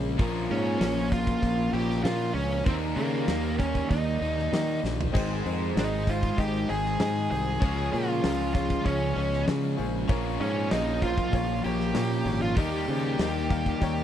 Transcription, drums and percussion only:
0.19 kick, open hi-hat
0.51 open hi-hat
0.81 snare, open hi-hat
1.12 kick, open hi-hat
1.27 kick
1.43 kick, open hi-hat
1.74 open hi-hat
1.90 snare
2.05 snare, open hi-hat
2.36 open hi-hat
2.66 kick, open hi-hat
2.97 open hi-hat
3.28 snare, open hi-hat
3.60 kick, open hi-hat
3.75 kick
3.91 kick, open hi-hat
4.22 open hi-hat
4.38 snare
4.53 snare, open hi-hat
4.85 snare
5.01 floor tom
5.15 kick, crash
5.46 open hi-hat
5.77 snare, open hi-hat
6.07 kick, open hi-hat
6.23 kick
6.38 kick, open hi-hat
6.69 open hi-hat
6.85 snare
7.00 snare, open hi-hat
7.31 open hi-hat
7.62 kick, open hi-hat
7.94 open hi-hat
8.24 snare, open hi-hat
8.55 kick, open hi-hat
8.70 kick
8.86 kick, open hi-hat
9.17 open hi-hat
9.33 snare
9.48 snare, open hi-hat
9.79 open hi-hat
10.09 kick, open hi-hat
10.41 open hi-hat
10.71 snare, open hi-hat
11.02 kick, open hi-hat
11.18 kick
11.33 kick, open hi-hat
11.65 open hi-hat
11.80 snare
11.95 snare, open hi-hat
12.26 open hi-hat
12.56 kick, open hi-hat
12.88 open hi-hat
13.19 snare, open hi-hat
13.50 kick, open hi-hat
13.66 kick
13.81 kick, open hi-hat

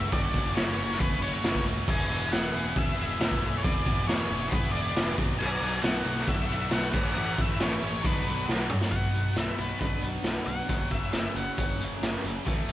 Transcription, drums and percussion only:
0.12 kick, open hi-hat
0.34 kick, open hi-hat
0.57 snare, open hi-hat
0.78 open hi-hat
0.90 snare
1.00 kick, open hi-hat
1.22 open hi-hat
1.44 snare, open hi-hat
1.55 kick
1.66 open hi-hat
1.88 kick, crash
2.10 open hi-hat
2.33 snare, open hi-hat
2.55 open hi-hat
2.76 kick, open hi-hat
2.99 open hi-hat
3.21 snare, open hi-hat
3.31 kick
3.43 open hi-hat
3.65 kick, open hi-hat
3.86 kick, open hi-hat
4.09 snare, open hi-hat
4.32 open hi-hat
4.52 kick, open hi-hat
4.75 open hi-hat
4.96 snare, open hi-hat
5.18 kick, open hi-hat
5.40 crash
5.62 open hi-hat
5.84 snare, open hi-hat
6.06 open hi-hat
6.16 snare
6.26 kick, open hi-hat
6.48 open hi-hat
6.71 snare, open hi-hat
6.93 kick, crash
7.38 kick, open hi-hat
7.60 snare, open hi-hat
7.82 open hi-hat
8.04 kick, open hi-hat
8.26 open hi-hat
8.49 snare
8.70 mid tom
8.81 snare
8.92 kick, closed hi-hat
9.14 closed hi-hat
9.36 snare, closed hi-hat
9.59 closed hi-hat
9.81 kick, closed hi-hat
10.02 closed hi-hat
10.24 snare, closed hi-hat
10.46 closed hi-hat
10.69 kick, closed hi-hat
10.91 kick, closed hi-hat
11.13 snare, closed hi-hat
11.36 closed hi-hat
11.58 kick, closed hi-hat
11.81 closed hi-hat
12.03 snare, closed hi-hat
12.25 closed hi-hat
12.46 kick, closed hi-hat
12.68 closed hi-hat

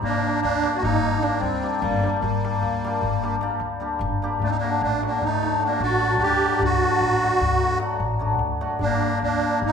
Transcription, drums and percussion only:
0.02 darbuka dum
0.13 darbuka tek
0.24 darbuka tek
0.43 darbuka tek
0.53 darbuka tek
0.64 darbuka tek
0.75 darbuka tek
0.83 darbuka dum
1.04 darbuka tek
1.14 darbuka tek
1.23 darbuka tek
1.44 darbuka tek
1.53 darbuka tek
1.64 darbuka tek
1.74 darbuka tek
1.84 darbuka tek, darbuka dum
2.04 darbuka tek
2.24 darbuka dum
2.34 darbuka tek
2.45 darbuka tek
2.63 darbuka tek
2.74 darbuka tek
2.85 darbuka tek
2.95 darbuka tek
3.02 darbuka dum
3.24 darbuka tek
3.34 darbuka tek
3.41 darbuka tek
3.50 darbuka tek
3.60 darbuka tek
3.70 darbuka tek
3.90 darbuka tek
3.99 darbuka tek, darbuka dum
4.40 darbuka dum
4.51 darbuka tek
4.62 darbuka tek
4.82 darbuka tek
5.03 darbuka tek
5.12 darbuka tek
5.21 darbuka dum
5.43 darbuka tek
5.52 darbuka tek
5.60 darbuka tek
5.70 darbuka tek
5.78 darbuka tek
5.91 darbuka tek
6.00 darbuka tek
6.11 darbuka tek
6.20 darbuka tek, darbuka dum
6.42 darbuka tek
6.59 darbuka dum
6.71 darbuka tek
6.81 darbuka tek
6.91 darbuka tek
7.00 darbuka tek
7.11 darbuka tek
7.22 darbuka tek
7.33 darbuka tek
7.41 darbuka dum
7.52 darbuka tek
7.60 darbuka tek
7.71 darbuka tek
7.80 darbuka tek
7.99 darbuka dum
8.21 darbuka dum
8.39 darbuka tek
8.61 darbuka tek
8.79 darbuka dum
8.90 darbuka tek
9.01 darbuka tek
9.20 darbuka tek
9.32 darbuka tek
9.41 darbuka tek
9.52 darbuka tek
9.61 darbuka dum

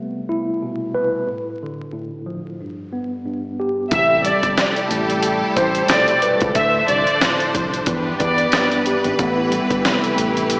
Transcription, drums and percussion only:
3.91 kick, closed hi-hat
4.25 closed hi-hat
4.43 kick, closed hi-hat
4.58 snare, closed hi-hat
4.76 closed hi-hat
4.91 closed hi-hat
5.10 closed hi-hat
5.22 closed hi-hat
5.56 kick, closed hi-hat
5.75 closed hi-hat
5.88 snare, closed hi-hat
6.08 closed hi-hat
6.22 closed hi-hat
6.41 kick, closed hi-hat
6.55 kick, closed hi-hat
6.88 closed hi-hat
7.07 closed hi-hat
7.21 snare, closed hi-hat
7.40 closed hi-hat
7.55 kick, closed hi-hat
7.74 closed hi-hat
7.86 kick, closed hi-hat
8.20 kick, closed hi-hat
8.38 closed hi-hat
8.52 snare, closed hi-hat
8.72 closed hi-hat
8.86 closed hi-hat
9.04 closed hi-hat
9.19 kick, closed hi-hat
9.52 closed hi-hat
9.71 kick, closed hi-hat
9.85 snare, closed hi-hat
10.04 closed hi-hat
10.18 closed hi-hat
10.37 closed hi-hat
10.50 closed hi-hat

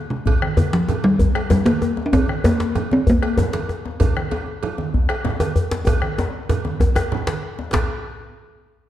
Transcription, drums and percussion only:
0.11 djembe slap
0.26 bombo low, cowbell, djembe bass, low conga
0.42 bombo rim, high conga
0.57 cowbell, djembe tone, djembe bass
0.73 djembe slap, high conga
0.89 cowbell, djembe tone, low conga
1.04 djembe slap, djembe tone, high conga
1.19 bombo low, high conga, djembe bass
1.35 bombo rim, cowbell
1.50 bombo rim, djembe slap, djembe tone, djembe bass, low conga
1.66 cowbell, djembe slap, high conga
1.82 bombo rim, djembe tone
1.97 djembe slap, djembe tone
2.13 bombo low, cowbell, djembe bass, low conga
2.29 bombo rim, high conga
2.44 cowbell, djembe slap, djembe tone, djembe bass
2.60 djembe slap, high conga
2.75 cowbell, djembe tone, low conga
2.91 djembe slap, djembe tone, high conga
3.07 bombo low, high conga, djembe bass
3.22 bombo rim, cowbell
3.37 bombo rim, djembe slap, djembe tone, djembe bass, low conga
3.53 cowbell, djembe slap, high conga
3.69 bombo rim, djembe tone, high conga
3.85 djembe slap, djembe tone
4.00 bombo low, cowbell, djembe bass, low conga
4.17 bombo rim, high conga
4.31 cowbell, djembe slap, djembe tone
4.47 high conga
4.63 cowbell, low conga
4.78 djembe slap, djembe tone, high conga
4.94 bombo low, high conga, djembe bass
5.09 bombo rim, cowbell
5.24 bombo rim, djembe slap, djembe tone, low conga
5.40 cowbell, djembe slap, djembe tone, high conga
5.56 djembe bass
5.71 djembe slap, djembe tone
5.87 bombo low, cowbell, djembe tone, high conga, low conga, djembe bass
6.02 bombo rim, high conga
6.18 bombo rim, djembe slap, djembe tone
6.49 cowbell, djembe slap, djembe tone, low conga
6.65 bombo rim, djembe slap, djembe tone, high conga
6.80 bombo rim, bombo low, djembe tone, djembe bass
6.96 bombo rim, cowbell, djembe tone
7.12 djembe slap, low conga
7.27 cowbell, djembe slap, high conga
7.43 bombo rim
7.59 djembe slap, djembe tone
7.73 bombo low, cowbell, djembe slap, low conga, djembe bass

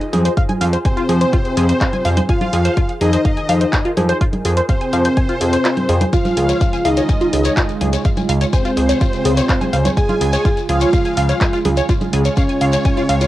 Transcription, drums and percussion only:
0.01 closed hi-hat
0.13 open hi-hat, low conga
0.25 closed hi-hat
0.37 kick, closed hi-hat
0.49 closed hi-hat, low conga
0.61 open hi-hat
0.73 closed hi-hat
0.85 kick, closed hi-hat
0.97 closed hi-hat
1.09 open hi-hat
1.21 closed hi-hat
1.33 kick, closed hi-hat
1.45 closed hi-hat
1.57 open hi-hat
1.69 closed hi-hat
1.81 kick, clap, closed hi-hat
1.93 closed hi-hat, low conga
2.05 open hi-hat
2.17 closed hi-hat, low conga
2.29 kick, closed hi-hat
2.41 closed hi-hat, low conga
2.53 open hi-hat
2.65 closed hi-hat
2.77 kick, closed hi-hat
2.89 closed hi-hat
3.01 open hi-hat
3.13 closed hi-hat
3.25 kick, closed hi-hat
3.37 closed hi-hat
3.49 open hi-hat
3.61 closed hi-hat
3.73 kick, clap, closed hi-hat
3.85 closed hi-hat
3.97 open hi-hat, low conga
4.09 closed hi-hat
4.21 kick, closed hi-hat
4.33 closed hi-hat, low conga
4.45 open hi-hat
4.57 closed hi-hat
4.69 kick, closed hi-hat
4.81 closed hi-hat
4.93 open hi-hat
5.05 closed hi-hat
5.17 kick, closed hi-hat
5.29 closed hi-hat
5.41 open hi-hat
5.53 closed hi-hat
5.65 clap, closed hi-hat
5.77 closed hi-hat, low conga
5.89 open hi-hat
6.01 closed hi-hat, low conga
6.13 kick, closed hi-hat, shekere
6.25 closed hi-hat, low conga, shekere
6.37 open hi-hat
6.49 closed hi-hat, shekere
6.61 kick, closed hi-hat, shekere
6.73 closed hi-hat, shekere
6.85 open hi-hat
6.97 closed hi-hat, shekere
7.09 kick, closed hi-hat, shekere
7.21 closed hi-hat, shekere
7.33 open hi-hat
7.44 closed hi-hat, shekere
7.57 kick, clap, closed hi-hat, shekere
7.69 closed hi-hat, shekere
7.81 open hi-hat, low conga
7.93 closed hi-hat, shekere
8.05 kick, closed hi-hat, shekere
8.17 closed hi-hat, low conga, shekere
8.29 open hi-hat
8.41 closed hi-hat, shekere
8.53 kick, closed hi-hat, shekere
8.65 closed hi-hat, shekere
8.77 open hi-hat
8.89 closed hi-hat, shekere
9.01 kick, closed hi-hat, shekere
9.13 closed hi-hat, shekere
9.25 open hi-hat
9.37 closed hi-hat, shekere
9.49 kick, clap, closed hi-hat, shekere
9.61 closed hi-hat, low conga, shekere
9.73 open hi-hat
9.85 closed hi-hat, low conga, shekere
9.97 kick, closed hi-hat, shekere
10.09 closed hi-hat, low conga, shekere
10.21 open hi-hat
10.33 closed hi-hat, shekere
10.45 kick, closed hi-hat, shekere
10.57 closed hi-hat, shekere
10.69 open hi-hat
10.81 closed hi-hat, shekere
10.93 kick, closed hi-hat, shekere
11.05 closed hi-hat, shekere
11.17 open hi-hat
11.29 closed hi-hat, shekere
11.41 kick, clap, closed hi-hat, shekere
11.53 closed hi-hat, shekere
11.65 open hi-hat, low conga
11.77 closed hi-hat, shekere
11.89 kick, closed hi-hat, shekere
12.01 closed hi-hat, low conga, shekere
12.13 open hi-hat
12.25 closed hi-hat, shekere
12.37 kick, closed hi-hat, shekere
12.48 closed hi-hat, shekere
12.61 open hi-hat
12.72 closed hi-hat, shekere
12.85 kick, closed hi-hat, shekere
12.97 closed hi-hat, shekere
13.09 open hi-hat
13.21 closed hi-hat, shekere

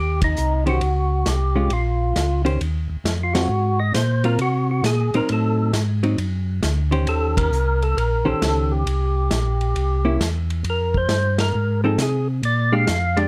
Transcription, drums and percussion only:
0.22 kick, ride
0.37 hi-hat pedal
0.67 ride
0.81 ride
1.26 snare, hi-hat pedal, ride
1.70 ride
2.16 snare, hi-hat pedal, ride
2.46 ride
2.61 ride
3.05 snare, hi-hat pedal, ride
3.35 snare, ride
3.94 snare, hi-hat pedal, ride
4.24 ride
4.39 ride
4.84 snare, hi-hat pedal, ride
5.14 ride
5.29 ride
5.73 snare, hi-hat pedal, ride
6.03 ride
6.18 ride
6.63 snare, hi-hat pedal, ride
6.92 ride
7.07 ride
7.37 kick, ride
7.53 hi-hat pedal
7.82 ride
7.98 ride
8.42 snare, hi-hat pedal, ride
8.87 ride
9.31 snare, hi-hat pedal, ride
9.61 ride
9.76 ride
10.21 snare, hi-hat pedal, ride
10.50 ride
10.64 ride
10.94 kick
11.09 snare, hi-hat pedal, ride
11.38 snare, ride
11.98 snare, hi-hat pedal, ride
12.43 ride
12.87 snare, hi-hat pedal, ride
13.17 ride

